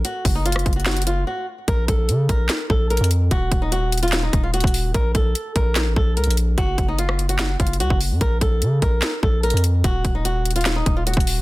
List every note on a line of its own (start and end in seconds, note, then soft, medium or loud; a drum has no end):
0.05 0.33 F#4 medium
0.05 closed hi-hat medium
0.25 0.64 F#1 loud
0.25 kick medium
0.25 open hi-hat medium
0.35 0.44 D#4 medium
0.46 0.74 F4 medium
0.46 closed hi-hat medium
0.52 cross-stick medium
0.52 closed hi-hat medium
0.59 closed hi-hat medium
0.66 1.25 F#1 loud
0.66 kick loud
0.66 closed hi-hat medium
0.73 0.85 F#4 medium
0.73 closed hi-hat medium
0.80 closed hi-hat soft
0.86 1.05 F#4 medium
0.86 snare loud
0.86 clap medium
0.86 closed hi-hat soft
0.91 closed hi-hat medium
0.97 closed hi-hat medium
1.02 closed hi-hat medium
1.07 1.25 F4 medium
1.07 closed hi-hat medium
1.27 1.45 F#4 medium
1.68 1.88 A#1 loud
1.68 1.86 A#4 medium
1.68 kick loud
1.68 closed hi-hat medium
1.88 2.10 A#1 loud
1.88 2.27 A4 medium
1.88 kick medium
1.88 closed hi-hat medium
2.09 2.28 C#3 loud
2.09 closed hi-hat medium
2.29 2.49 A#1 loud
2.29 2.68 A#4 medium
2.29 kick loud
2.29 closed hi-hat medium
2.49 snare loud
2.49 clap medium
2.49 closed hi-hat medium
2.70 2.99 A#1 loud
2.70 2.88 A4 medium
2.70 kick medium
2.90 3.09 A#4 medium
2.90 closed hi-hat soft
2.97 3.30 F2 loud
2.97 closed hi-hat medium
3.04 closed hi-hat medium
3.11 closed hi-hat medium
3.31 3.51 D#1 loud
3.31 3.60 F#4 loud
3.31 kick loud
3.31 closed hi-hat medium
3.52 4.30 D#1 loud
3.52 kick loud
3.52 closed hi-hat medium
3.62 3.71 D#4 medium
3.72 4.01 F#4 medium
3.72 closed hi-hat medium
3.92 closed hi-hat medium
3.98 closed hi-hat medium
4.03 4.21 F4 medium
4.03 closed hi-hat medium
4.08 closed hi-hat soft
4.12 snare loud
4.12 clap medium
4.12 closed hi-hat medium
4.23 4.41 D#4 medium
4.33 4.63 D#1 loud
4.33 kick loud
4.33 closed hi-hat medium
4.43 4.53 F4 medium
4.54 4.92 F#4 medium
4.54 closed hi-hat medium
4.60 4.93 D#1 loud
4.60 kick loud
4.60 closed hi-hat medium
4.67 closed hi-hat medium
4.74 open hi-hat medium
4.94 5.14 A#1 loud
4.94 5.13 A#4 medium
4.94 kick loud
4.94 closed hi-hat medium
5.15 5.34 A#1 loud
5.15 5.53 A4 medium
5.15 kick loud
5.15 closed hi-hat medium
5.35 closed hi-hat medium
5.56 5.88 A#1 loud
5.56 5.94 A#4 medium
5.56 kick loud
5.56 closed hi-hat medium
5.75 snare loud
5.75 clap medium
5.75 closed hi-hat medium
5.86 5.96 A1 loud
5.96 6.18 A#1 loud
5.96 6.15 A4 medium
5.96 kick loud
6.17 6.27 C#2 loud
6.17 6.35 A#4 medium
6.17 closed hi-hat soft
6.24 6.57 A#1 loud
6.24 closed hi-hat medium
6.30 closed hi-hat medium
6.37 closed hi-hat medium
6.58 6.77 F#1 loud
6.58 6.86 F#4 loud
6.58 kick loud
6.58 closed hi-hat medium
6.78 7.56 F#1 loud
6.78 kick medium
6.78 closed hi-hat medium
6.88 6.97 D#4 medium
6.99 7.27 F4 medium
6.99 closed hi-hat medium
7.09 cross-stick loud
7.19 closed hi-hat medium
7.29 7.38 F#4 medium
7.29 closed hi-hat medium
7.39 7.58 F#4 medium
7.39 cross-stick medium
7.39 snare loud
7.39 clap medium
7.39 closed hi-hat medium
7.60 7.82 F#1 loud
7.60 7.78 F4 medium
7.60 kick medium
7.60 closed hi-hat medium
7.67 closed hi-hat medium
7.73 closed hi-hat medium
7.80 7.90 C#2 loud
7.80 7.98 F#4 medium
7.80 closed hi-hat medium
7.90 8.12 F#1 loud
7.90 kick loud
8.01 open hi-hat medium
8.11 8.21 F#2 loud
8.21 8.41 A#1 loud
8.21 8.39 A#4 loud
8.21 kick loud
8.21 closed hi-hat medium
8.41 8.63 A#1 loud
8.41 8.80 A4 medium
8.41 kick medium
8.41 closed hi-hat medium
8.62 8.81 C#3 loud
8.62 closed hi-hat medium
8.82 9.02 A#1 loud
8.82 9.21 A#4 medium
8.82 kick loud
8.82 closed hi-hat medium
9.02 snare loud
9.02 clap medium
9.02 closed hi-hat medium
9.23 9.52 A#1 loud
9.23 9.41 A4 medium
9.23 kick loud
9.43 9.62 A#4 medium
9.43 closed hi-hat soft
9.50 9.83 F2 loud
9.50 closed hi-hat medium
9.57 closed hi-hat medium
9.64 closed hi-hat medium
9.84 10.04 D#1 loud
9.84 10.13 F#4 medium
9.84 kick loud
9.84 closed hi-hat medium
10.05 10.83 D#1 loud
10.05 kick medium
10.05 closed hi-hat medium
10.15 10.24 D#4 medium
10.25 10.54 F#4 medium
10.25 closed hi-hat medium
10.45 closed hi-hat medium
10.51 closed hi-hat medium
10.56 10.74 F4 medium
10.56 closed hi-hat medium
10.61 closed hi-hat soft
10.65 snare loud
10.65 clap medium
10.65 closed hi-hat medium
10.76 10.94 D#4 medium
10.86 11.16 D#1 loud
10.86 kick medium
10.86 closed hi-hat medium
10.97 11.06 F4 medium
11.07 11.42 F#4 medium
11.07 closed hi-hat medium
11.14 11.42 D#1 loud
11.14 kick medium
11.14 closed hi-hat medium
11.20 closed hi-hat medium
11.27 open hi-hat medium